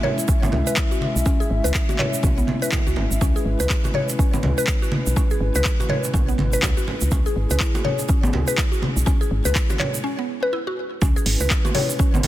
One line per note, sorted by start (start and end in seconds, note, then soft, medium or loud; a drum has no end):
0.00 10.00 G#3 medium
0.00 10.00 C#4 medium
0.00 10.00 E4 medium
0.00 0.17 C#5 loud
0.00 3.20 E5 medium
0.00 mid tom medium
0.04 low conga loud
0.18 muted conga soft
0.18 shaker medium
0.28 0.41 C#4 loud
0.28 kick loud
0.28 shaker medium
0.42 0.50 G#1 loud
0.42 0.52 B3 medium
0.42 high conga loud
0.42 shaker soft
0.52 0.63 C#2 medium
0.52 mid tom medium
0.52 muted conga soft
0.52 high conga medium
0.52 low conga medium
0.67 0.76 B4 loud
0.67 shaker medium
0.76 0.90 E4 medium
0.76 kick loud
0.76 clap loud
0.76 muted conga soft
0.76 shaker medium
0.91 1.00 F#4 medium
0.91 shaker soft
1.01 mid tom medium
1.01 muted conga soft
1.01 high conga medium
1.16 1.23 B1 medium
1.16 shaker medium
1.26 1.39 C#4 loud
1.26 kick loud
1.26 muted conga soft
1.26 shaker medium
1.40 1.49 G#4 medium
1.40 shaker soft
1.51 1.60 G#1 loud
1.64 1.71 C#2 medium
1.64 1.73 B4 loud
1.64 muted conga soft
1.64 shaker medium
1.74 1.88 E4 medium
1.74 kick loud
1.74 clap loud
1.74 shaker medium
1.89 1.98 F#4 medium
1.89 muted conga soft
1.89 high conga medium
1.89 shaker soft
1.99 2.12 C#5 loud
1.99 clap medium
1.99 mid tom medium
1.99 low conga medium
2.14 muted conga soft
2.14 shaker medium
2.23 2.42 B1 medium
2.23 2.36 C#4 loud
2.23 kick loud
2.23 mid tom medium
2.23 high conga loud
2.23 low conga medium
2.23 shaker medium
2.38 2.47 B3 medium
2.38 shaker soft
2.47 mid tom medium
2.47 muted conga soft
2.47 high conga medium
2.62 2.71 B4 loud
2.62 shaker medium
2.72 2.85 E4 medium
2.72 kick loud
2.72 clap loud
2.72 muted conga soft
2.72 high conga medium
2.72 low conga medium
2.72 shaker medium
2.87 2.94 C#2 medium
2.87 2.96 F#4 medium
2.87 shaker soft
2.96 3.07 G#1 medium
2.96 muted conga soft
2.96 high conga medium
2.96 low conga medium
3.11 3.18 G#1 medium
3.11 shaker medium
3.21 3.31 C#2 loud
3.21 3.34 C#4 loud
3.21 7.10 B4 medium
3.21 kick loud
3.21 muted conga medium
3.21 shaker medium
3.36 3.45 G#4 medium
3.36 shaker soft
3.45 3.55 G#1 loud
3.60 3.67 C#2 medium
3.60 3.69 B4 loud
3.60 muted conga soft
3.60 shaker medium
3.69 3.83 E4 medium
3.69 kick loud
3.69 clap loud
3.69 shaker medium
3.84 3.93 F#4 medium
3.84 muted conga medium
3.84 high conga medium
3.84 shaker soft
3.94 4.08 C#5 loud
3.94 mid tom medium
3.94 low conga medium
4.09 muted conga soft
4.09 shaker medium
4.19 4.32 C#4 loud
4.19 kick loud
4.19 shaker medium
4.33 4.40 G#1 loud
4.33 4.42 B3 medium
4.33 high conga loud
4.33 shaker soft
4.43 4.53 C#2 medium
4.43 mid tom medium
4.43 muted conga soft
4.43 high conga medium
4.43 low conga medium
4.58 4.67 B4 loud
4.58 shaker medium
4.67 4.81 E4 medium
4.67 kick loud
4.67 clap loud
4.67 muted conga soft
4.67 shaker medium
4.82 4.91 F#4 medium
4.82 shaker soft
4.92 mid tom medium
4.92 muted conga soft
4.92 high conga medium
5.07 5.13 B1 medium
5.07 shaker medium
5.16 5.29 C#4 loud
5.16 kick loud
5.16 muted conga medium
5.16 shaker medium
5.31 5.40 G#4 medium
5.31 shaker soft
5.41 5.51 G#1 loud
5.55 5.62 C#2 medium
5.55 5.64 B4 loud
5.55 muted conga soft
5.55 shaker medium
5.64 5.78 E4 medium
5.64 kick loud
5.64 clap loud
5.64 shaker medium
5.80 5.89 F#4 medium
5.80 muted conga soft
5.80 high conga medium
5.80 shaker soft
5.89 6.03 C#5 loud
5.89 mid tom medium
5.89 low conga loud
6.04 muted conga soft
6.04 shaker medium
6.14 6.32 B1 medium
6.14 6.27 C#4 loud
6.14 kick loud
6.14 mid tom medium
6.14 high conga loud
6.14 low conga medium
6.14 shaker medium
6.29 6.37 B3 medium
6.29 shaker soft
6.38 6.57 G#1 medium
6.38 mid tom loud
6.38 muted conga soft
6.38 high conga medium
6.53 6.62 B4 loud
6.53 shaker medium
6.62 6.73 C#2 medium
6.62 6.76 E4 medium
6.62 kick loud
6.62 clap loud
6.62 muted conga soft
6.62 high conga medium
6.62 low conga medium
6.62 shaker medium
6.77 6.86 F#4 medium
6.77 shaker soft
6.87 muted conga soft
6.87 high conga medium
6.87 low conga medium
7.01 7.09 C#2 medium
7.01 shaker medium
7.11 7.22 C#2 loud
7.11 7.25 C#4 loud
7.11 10.04 G#4 medium
7.11 kick loud
7.11 muted conga medium
7.11 shaker medium
7.26 7.35 G#4 medium
7.26 shaker soft
7.36 7.46 G#1 loud
7.51 7.57 C#2 medium
7.51 7.59 B4 loud
7.51 muted conga soft
7.51 shaker medium
7.60 7.73 E4 medium
7.60 kick loud
7.60 clap loud
7.60 shaker medium
7.74 7.84 F#4 medium
7.74 muted conga medium
7.74 high conga medium
7.74 shaker soft
7.84 7.98 C#5 loud
7.84 mid tom medium
7.84 low conga medium
7.99 muted conga soft
7.99 shaker medium
8.09 8.22 C#4 loud
8.09 kick loud
8.09 shaker medium
8.23 8.30 G#1 loud
8.23 8.32 B3 medium
8.23 high conga loud
8.23 shaker soft
8.33 8.43 C#2 medium
8.33 mid tom medium
8.33 muted conga soft
8.33 high conga medium
8.33 low conga loud
8.48 8.57 B4 loud
8.48 shaker medium
8.57 8.71 E4 medium
8.57 kick loud
8.57 clap loud
8.57 muted conga soft
8.57 shaker medium
8.72 8.81 F#4 medium
8.72 shaker soft
8.82 mid tom loud
8.82 muted conga medium
8.82 high conga medium
8.96 9.03 B1 medium
8.96 shaker medium
9.06 9.19 C#4 loud
9.06 kick loud
9.06 muted conga medium
9.06 shaker medium
9.21 9.30 G#4 medium
9.21 shaker soft
9.31 9.41 G#1 loud
9.45 9.52 C#2 medium
9.45 9.54 B4 loud
9.45 muted conga soft
9.45 shaker medium
9.55 9.68 E4 medium
9.55 kick loud
9.55 clap medium
9.55 shaker medium
9.70 9.79 F#4 medium
9.70 muted conga medium
9.70 high conga medium
9.70 shaker soft
9.79 9.93 C#5 loud
9.79 clap medium
9.79 mid tom medium
9.79 low conga loud
9.94 muted conga soft
9.94 shaker medium
10.04 10.17 C#4 loud
10.19 10.28 B3 medium
10.43 10.52 B4 loud
10.53 10.66 E4 medium
10.67 10.76 F#4 medium
11.02 11.12 C#2 loud
11.02 12.27 G#3 medium
11.02 11.15 C#4 loud
11.02 12.27 C#4 medium
11.02 12.27 E4 medium
11.02 12.27 B4 medium
11.02 kick loud
11.02 muted conga medium
11.02 shaker medium
11.16 11.25 G#4 medium
11.16 shaker soft
11.26 11.36 G#1 loud
11.26 open hi-hat medium
11.40 11.47 C#2 medium
11.40 11.50 B4 loud
11.40 muted conga soft
11.40 shaker medium
11.50 11.64 E4 medium
11.50 kick loud
11.50 clap loud
11.50 shaker medium
11.65 11.74 F#4 medium
11.65 muted conga medium
11.65 high conga medium
11.65 shaker soft
11.75 11.88 C#5 loud
11.75 open hi-hat medium
11.75 mid tom medium
11.75 low conga loud
11.89 muted conga soft
11.89 shaker medium
11.99 12.12 C#4 loud
11.99 kick loud
11.99 shaker medium
12.14 12.20 G#1 loud
12.14 12.23 B3 medium
12.14 high conga loud
12.14 shaker soft
12.23 12.27 C#2 medium
12.23 open hi-hat medium
12.23 mid tom medium